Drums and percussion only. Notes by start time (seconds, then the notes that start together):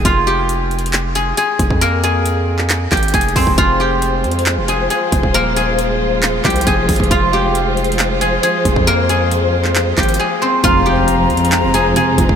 0.05 kick, closed hi-hat
0.49 closed hi-hat
0.71 closed hi-hat
0.79 closed hi-hat
0.86 closed hi-hat
0.93 clap, closed hi-hat
1.15 closed hi-hat
1.37 closed hi-hat
1.59 kick, closed hi-hat
1.70 kick
1.81 closed hi-hat
2.04 closed hi-hat
2.26 closed hi-hat
2.59 clap
2.70 clap, closed hi-hat
2.92 kick, clap, closed hi-hat
2.97 closed hi-hat
3.03 closed hi-hat
3.08 closed hi-hat
3.14 kick, closed hi-hat
3.21 closed hi-hat
3.29 closed hi-hat
3.36 kick, open hi-hat
3.47 kick
3.58 kick, closed hi-hat
4.02 closed hi-hat
4.24 closed hi-hat
4.31 closed hi-hat
4.39 closed hi-hat
4.46 clap, closed hi-hat
4.68 closed hi-hat
4.90 closed hi-hat
5.12 kick, closed hi-hat
5.23 kick
5.34 closed hi-hat
5.57 closed hi-hat
5.79 closed hi-hat
6.23 clap, closed hi-hat
6.45 kick, clap, closed hi-hat
6.50 closed hi-hat
6.56 closed hi-hat
6.61 closed hi-hat
6.67 kick, closed hi-hat
6.89 kick, closed hi-hat, open hi-hat
6.96 kick, closed hi-hat
7.04 closed hi-hat
7.11 kick, closed hi-hat
7.55 closed hi-hat
7.77 closed hi-hat
7.84 closed hi-hat
7.92 closed hi-hat
7.99 clap, closed hi-hat
8.21 closed hi-hat
8.43 closed hi-hat
8.65 kick, closed hi-hat
8.76 kick
8.87 closed hi-hat
9.09 closed hi-hat
9.31 closed hi-hat
9.64 clap
9.76 clap, closed hi-hat
9.98 kick, clap, closed hi-hat
10.03 closed hi-hat
10.09 closed hi-hat
10.14 closed hi-hat
10.64 kick, closed hi-hat
11.08 closed hi-hat
11.30 closed hi-hat
11.37 closed hi-hat
11.45 closed hi-hat
11.52 clap, closed hi-hat
11.74 closed hi-hat
11.96 closed hi-hat
12.18 kick, closed hi-hat
12.29 kick